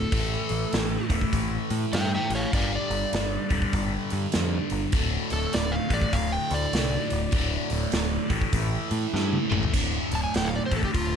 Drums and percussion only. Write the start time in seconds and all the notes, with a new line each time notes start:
0.12 kick, open hi-hat
0.49 open hi-hat
0.73 snare, open hi-hat
1.10 kick, open hi-hat
1.21 kick
1.33 kick, open hi-hat
1.70 open hi-hat
1.93 snare, open hi-hat
2.30 open hi-hat
2.53 kick, open hi-hat
2.91 open hi-hat
3.13 snare, open hi-hat
3.50 kick, open hi-hat
3.62 kick
3.73 kick, open hi-hat
4.10 open hi-hat
4.32 snare, open hi-hat
4.70 open hi-hat
4.92 kick, open hi-hat
5.30 open hi-hat
5.53 snare, open hi-hat
5.90 kick, open hi-hat
6.02 kick
6.13 kick, open hi-hat
6.51 open hi-hat
6.73 snare, open hi-hat
7.10 open hi-hat
7.32 kick, open hi-hat
7.70 open hi-hat
7.92 snare, open hi-hat
8.30 kick, open hi-hat
8.41 kick
8.53 kick, open hi-hat
8.91 open hi-hat
9.15 snare
9.33 high tom
9.52 mid tom
9.63 floor tom
9.74 kick, crash
10.11 open hi-hat
10.34 snare, open hi-hat
10.71 kick, open hi-hat
10.83 kick
10.94 kick, open hi-hat